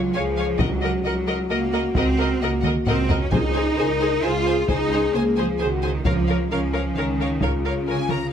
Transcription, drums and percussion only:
0, 0, Header, 1, 2, 480
1, 0, Start_track
1, 0, Tempo, 454545
1, 633, Time_signature, 3, 2, 24, 8
1, 8793, End_track
2, 0, Start_track
2, 0, Title_t, "Taiko and cinematic ensemble drums"
2, 622, Note_on_c, 9, 41, 76
2, 727, Note_off_c, 9, 41, 0
2, 2060, Note_on_c, 9, 41, 80
2, 2165, Note_off_c, 9, 41, 0
2, 2780, Note_on_c, 9, 47, 62
2, 2885, Note_off_c, 9, 47, 0
2, 3026, Note_on_c, 9, 45, 62
2, 3132, Note_off_c, 9, 45, 0
2, 3265, Note_on_c, 9, 43, 70
2, 3370, Note_off_c, 9, 43, 0
2, 3510, Note_on_c, 9, 41, 80
2, 3615, Note_off_c, 9, 41, 0
2, 4948, Note_on_c, 9, 41, 71
2, 5054, Note_off_c, 9, 41, 0
2, 6387, Note_on_c, 9, 41, 75
2, 6493, Note_off_c, 9, 41, 0
2, 7822, Note_on_c, 9, 41, 74
2, 7927, Note_off_c, 9, 41, 0
2, 8543, Note_on_c, 9, 47, 61
2, 8649, Note_off_c, 9, 47, 0
2, 8793, End_track
0, 0, End_of_file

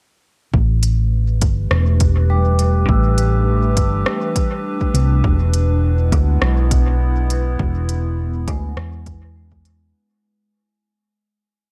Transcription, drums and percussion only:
0, 0, Header, 1, 2, 480
1, 0, Start_track
1, 0, Tempo, 588235
1, 437, Time_signature, 4, 2, 24, 8
1, 9555, End_track
2, 0, Start_track
2, 0, Title_t, "Drums"
2, 437, Note_on_c, 9, 36, 97
2, 519, Note_off_c, 9, 36, 0
2, 675, Note_on_c, 9, 42, 48
2, 757, Note_off_c, 9, 42, 0
2, 1155, Note_on_c, 9, 42, 47
2, 1157, Note_on_c, 9, 36, 97
2, 1236, Note_off_c, 9, 42, 0
2, 1238, Note_off_c, 9, 36, 0
2, 1395, Note_on_c, 9, 37, 83
2, 1476, Note_off_c, 9, 37, 0
2, 1633, Note_on_c, 9, 42, 52
2, 1637, Note_on_c, 9, 36, 95
2, 1715, Note_off_c, 9, 42, 0
2, 1718, Note_off_c, 9, 36, 0
2, 2112, Note_on_c, 9, 42, 49
2, 2194, Note_off_c, 9, 42, 0
2, 2356, Note_on_c, 9, 36, 110
2, 2437, Note_off_c, 9, 36, 0
2, 2593, Note_on_c, 9, 42, 49
2, 2675, Note_off_c, 9, 42, 0
2, 3074, Note_on_c, 9, 42, 49
2, 3075, Note_on_c, 9, 36, 101
2, 3156, Note_off_c, 9, 42, 0
2, 3157, Note_off_c, 9, 36, 0
2, 3314, Note_on_c, 9, 37, 86
2, 3396, Note_off_c, 9, 37, 0
2, 3556, Note_on_c, 9, 36, 97
2, 3556, Note_on_c, 9, 42, 52
2, 3637, Note_off_c, 9, 36, 0
2, 3637, Note_off_c, 9, 42, 0
2, 3925, Note_on_c, 9, 36, 60
2, 4007, Note_off_c, 9, 36, 0
2, 4036, Note_on_c, 9, 42, 49
2, 4118, Note_off_c, 9, 42, 0
2, 4276, Note_on_c, 9, 36, 113
2, 4358, Note_off_c, 9, 36, 0
2, 4517, Note_on_c, 9, 42, 50
2, 4598, Note_off_c, 9, 42, 0
2, 4996, Note_on_c, 9, 36, 102
2, 4997, Note_on_c, 9, 42, 47
2, 5078, Note_off_c, 9, 36, 0
2, 5079, Note_off_c, 9, 42, 0
2, 5236, Note_on_c, 9, 37, 88
2, 5317, Note_off_c, 9, 37, 0
2, 5476, Note_on_c, 9, 36, 105
2, 5477, Note_on_c, 9, 42, 53
2, 5558, Note_off_c, 9, 36, 0
2, 5559, Note_off_c, 9, 42, 0
2, 5958, Note_on_c, 9, 42, 48
2, 6040, Note_off_c, 9, 42, 0
2, 6197, Note_on_c, 9, 36, 109
2, 6278, Note_off_c, 9, 36, 0
2, 6437, Note_on_c, 9, 42, 48
2, 6519, Note_off_c, 9, 42, 0
2, 6917, Note_on_c, 9, 36, 106
2, 6917, Note_on_c, 9, 42, 47
2, 6998, Note_off_c, 9, 42, 0
2, 6999, Note_off_c, 9, 36, 0
2, 7157, Note_on_c, 9, 37, 92
2, 7238, Note_off_c, 9, 37, 0
2, 7395, Note_on_c, 9, 42, 47
2, 7397, Note_on_c, 9, 36, 104
2, 7477, Note_off_c, 9, 42, 0
2, 7479, Note_off_c, 9, 36, 0
2, 7766, Note_on_c, 9, 36, 61
2, 7847, Note_off_c, 9, 36, 0
2, 7876, Note_on_c, 9, 42, 48
2, 7958, Note_off_c, 9, 42, 0
2, 9555, End_track
0, 0, End_of_file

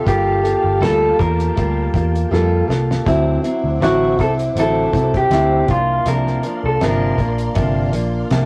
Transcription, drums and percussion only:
0, 0, Header, 1, 2, 480
1, 0, Start_track
1, 0, Tempo, 749251
1, 42, Time_signature, 4, 2, 24, 8
1, 5417, End_track
2, 0, Start_track
2, 0, Title_t, "Drums"
2, 42, Note_on_c, 9, 36, 100
2, 45, Note_on_c, 9, 42, 89
2, 106, Note_off_c, 9, 36, 0
2, 109, Note_off_c, 9, 42, 0
2, 288, Note_on_c, 9, 42, 78
2, 352, Note_off_c, 9, 42, 0
2, 531, Note_on_c, 9, 42, 77
2, 532, Note_on_c, 9, 38, 111
2, 595, Note_off_c, 9, 42, 0
2, 596, Note_off_c, 9, 38, 0
2, 764, Note_on_c, 9, 36, 92
2, 772, Note_on_c, 9, 42, 74
2, 828, Note_off_c, 9, 36, 0
2, 836, Note_off_c, 9, 42, 0
2, 897, Note_on_c, 9, 42, 60
2, 961, Note_off_c, 9, 42, 0
2, 1007, Note_on_c, 9, 42, 84
2, 1010, Note_on_c, 9, 36, 101
2, 1071, Note_off_c, 9, 42, 0
2, 1074, Note_off_c, 9, 36, 0
2, 1242, Note_on_c, 9, 36, 102
2, 1251, Note_on_c, 9, 42, 81
2, 1306, Note_off_c, 9, 36, 0
2, 1315, Note_off_c, 9, 42, 0
2, 1380, Note_on_c, 9, 42, 51
2, 1444, Note_off_c, 9, 42, 0
2, 1493, Note_on_c, 9, 38, 51
2, 1558, Note_off_c, 9, 38, 0
2, 1731, Note_on_c, 9, 38, 88
2, 1796, Note_off_c, 9, 38, 0
2, 1864, Note_on_c, 9, 38, 92
2, 1928, Note_off_c, 9, 38, 0
2, 1963, Note_on_c, 9, 36, 111
2, 1967, Note_on_c, 9, 42, 87
2, 2027, Note_off_c, 9, 36, 0
2, 2031, Note_off_c, 9, 42, 0
2, 2206, Note_on_c, 9, 42, 76
2, 2270, Note_off_c, 9, 42, 0
2, 2449, Note_on_c, 9, 42, 72
2, 2450, Note_on_c, 9, 38, 116
2, 2513, Note_off_c, 9, 42, 0
2, 2514, Note_off_c, 9, 38, 0
2, 2684, Note_on_c, 9, 36, 90
2, 2691, Note_on_c, 9, 42, 74
2, 2748, Note_off_c, 9, 36, 0
2, 2755, Note_off_c, 9, 42, 0
2, 2814, Note_on_c, 9, 42, 64
2, 2878, Note_off_c, 9, 42, 0
2, 2926, Note_on_c, 9, 42, 87
2, 2990, Note_off_c, 9, 42, 0
2, 3161, Note_on_c, 9, 36, 95
2, 3168, Note_on_c, 9, 42, 78
2, 3225, Note_off_c, 9, 36, 0
2, 3232, Note_off_c, 9, 42, 0
2, 3294, Note_on_c, 9, 36, 87
2, 3296, Note_on_c, 9, 42, 54
2, 3358, Note_off_c, 9, 36, 0
2, 3360, Note_off_c, 9, 42, 0
2, 3402, Note_on_c, 9, 42, 85
2, 3405, Note_on_c, 9, 38, 109
2, 3466, Note_off_c, 9, 42, 0
2, 3469, Note_off_c, 9, 38, 0
2, 3640, Note_on_c, 9, 42, 77
2, 3643, Note_on_c, 9, 36, 112
2, 3705, Note_off_c, 9, 42, 0
2, 3707, Note_off_c, 9, 36, 0
2, 3881, Note_on_c, 9, 42, 88
2, 3945, Note_off_c, 9, 42, 0
2, 4016, Note_on_c, 9, 38, 34
2, 4080, Note_off_c, 9, 38, 0
2, 4121, Note_on_c, 9, 42, 73
2, 4185, Note_off_c, 9, 42, 0
2, 4364, Note_on_c, 9, 42, 73
2, 4366, Note_on_c, 9, 38, 112
2, 4428, Note_off_c, 9, 42, 0
2, 4430, Note_off_c, 9, 38, 0
2, 4601, Note_on_c, 9, 36, 85
2, 4605, Note_on_c, 9, 42, 74
2, 4665, Note_off_c, 9, 36, 0
2, 4669, Note_off_c, 9, 42, 0
2, 4730, Note_on_c, 9, 42, 61
2, 4794, Note_off_c, 9, 42, 0
2, 4839, Note_on_c, 9, 42, 92
2, 4845, Note_on_c, 9, 36, 105
2, 4903, Note_off_c, 9, 42, 0
2, 4909, Note_off_c, 9, 36, 0
2, 5080, Note_on_c, 9, 42, 82
2, 5145, Note_off_c, 9, 42, 0
2, 5321, Note_on_c, 9, 42, 79
2, 5325, Note_on_c, 9, 38, 100
2, 5385, Note_off_c, 9, 42, 0
2, 5389, Note_off_c, 9, 38, 0
2, 5417, End_track
0, 0, End_of_file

